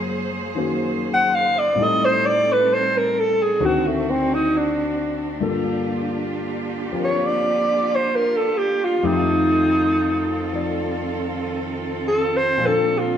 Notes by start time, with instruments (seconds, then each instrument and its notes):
Already playing: grand piano F#2 C#3 G#3 C4 F4 A#4, cello section F#3 A#3 G#4 C5
0.55 grand piano D#3 A#3 C#4 F#4 C5
1.14 alto saxophone F#5
1.35 alto saxophone F5
1.59 alto saxophone D5
1.75 grand piano A2 G3 C4, cello section A4
1.80 cello section G3 C4, grand piano D#4 A4, alto saxophone D#5
2.05 alto saxophone C5
2.26 alto saxophone D5
2.52 alto saxophone B4
2.74 alto saxophone C5
2.97 alto saxophone A#4
3.19 alto saxophone A4
3.42 alto saxophone G#4
3.57 grand piano D2 D3 D#3 C4 F#4, cello section D4 F#4
3.65 alto saxophone F#4
3.87 alto saxophone A3
4.10 alto saxophone C4
4.34 alto saxophone D#4
4.57 alto saxophone D4
5.40 grand piano G2 D3 A#3 F4 A4, cello section A#3 F4 G4
6.92 grand piano F3 C4 G4 A#4
7.05 alto saxophone C#5
7.26 alto saxophone D5
7.95 alto saxophone C5
8.15 alto saxophone A#4
8.37 alto saxophone A4
8.58 alto saxophone G4
8.84 alto saxophone F4
9.01 grand piano F2 F3 A3 D#4 G4, cello section D#3 C4 A4
9.06 alto saxophone D#4
10.52 grand piano F3 D5
12.08 alto saxophone A4
12.37 alto saxophone C5
12.57 grand piano A#2 F3
12.63 cello section D3 A#3, grand piano C4 D4, alto saxophone A4
12.69 grand piano A4
12.98 alto saxophone F4